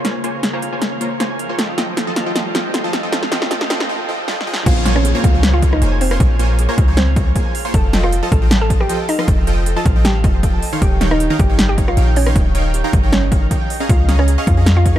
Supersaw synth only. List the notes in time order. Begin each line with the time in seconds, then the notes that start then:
0.05 A#3 F4 C5 C#5 G#5
0.24 A#3 F4 C5 C#5 G#5
0.53 A#3 F4 C5 C#5 A#5
0.73 A#3 F4 C5 C#5 G#5
1.01 A#3 F4 C5 C#5 A#5
1.20 A#3 F4 C5 C#5 G#5
1.49 A#3 F4 C5 C#5 C6
1.58 F3 F4 A4 D#5 G5
1.78 F3 F4 A4 D#5 G5
2.07 F3 F4 A4 D#5 A5
2.26 F3 F4 A4 D#5 G5
2.36 F3 F4 A4 D#5 G5
2.55 F3 F4 A4 D#5 G5
2.84 F3 F4 A4 D#5 A5
3.03 F3 F4 A4 D#5 G5
3.12 F3 F4 A4 D#5 G5
3.32 F3 F4 A4 D#5 G5
3.51 F3 F4 A4 D#5 G5
3.70 F3 F4 A4 D#5 G5
3.89 F3 F4 A4 D#5 G5
4.09 F3 F4 A4 D#5 G5
4.28 F3 F4 A4 D#5 G5
4.47 F3 F4 G#4 D#5 G5
4.66 A#3 F4 C5 C#5 G#5
4.86 A#3 F4 C5 C#5 G#5
5.15 A#3 F4 C5 C#5 A#5
5.34 A#3 F4 C5 C#5 G#5
5.62 A#3 F4 C5 C#5 A#5
5.82 A#3 F4 C5 C#5 G#5
6.11 A#3 F4 C5 C#5 C6
6.20 A#3 G#5
6.39 A#3 F4 C5 C#5 G#5
6.69 A#3 F4 C5 C#5 A#5
6.88 A#3 F4 C5 C#5 G#5
7.16 A#3 F4 C5 C#5 A#5
7.36 A#3 F4 C5 C#5 G#5
7.65 A#3 F4 C5 C#5 C6
7.74 F3 F4 A4 D#5 G5
7.93 F3 F4 A4 D#5 G5
8.23 F3 F4 A4 D#5 A5
8.42 F3 F4 A4 D#5 G5
8.70 F3 F4 A4 D#5 A5
8.89 F3 F4 A4 D#5 G5
9.19 F3 F4 A4 D#5 C6
9.28 F3 F4 A4 D#5 G5
9.47 F3 F4 A4 D#5 G5
9.76 F3 F4 A4 D#5 A5
9.96 F3 F4 A4 D#5 G5
10.24 F3 F4 A4 D#5 A5
10.43 F3 F4 A4 D#5 G5
10.73 D#3 D#4 C#5 F5 C6
10.82 D#3 D#4 C#5 G5
11.01 D#3 D#4 C#5 F5 G5
11.30 D#3 D#4 C#5 F5 A#5
11.50 D#3 D#4 C#5 F5 G5
11.78 D#3 D#4 C#5 F5 A#5
11.97 D#3 D#4 C#5 F5 G5
12.26 D#3 D#4 C#5 F5 C6
12.36 D#3 D#4 F5
12.55 D#3 D#4 C#5 F5 G5
12.84 D#3 D#4 C#5 F5 A#5
13.03 D#3 D#4 C#5 F5 G5
13.32 D#3 D#4 C#5 F5 A#5
13.51 D#3 D#4 C#5 F5 G5
13.80 C#4 G#4 D#5 F5 A#5
13.89 G#4 D#5 F5 A#5
14.09 C#4 G#4 D#5 F5 A#5
14.38 C#4 G#4 D#5 F5 C#6
14.57 C#4 G#4 D#5 F5 A#5
14.86 C#4 G#4 D#5 F5 C#6